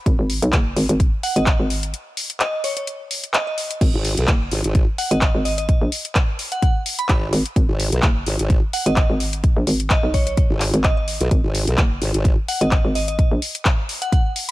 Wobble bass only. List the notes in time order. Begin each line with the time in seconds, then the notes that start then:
3.94 G#1
4.17 B1
4.52 G#1
4.64 G#1
7.09 G#1
7.69 G#1
7.92 B1
8.27 G#1
8.39 G#1
10.50 G#1
11.21 B1
11.44 G#1
11.67 B1
12.02 G#1
12.14 G#1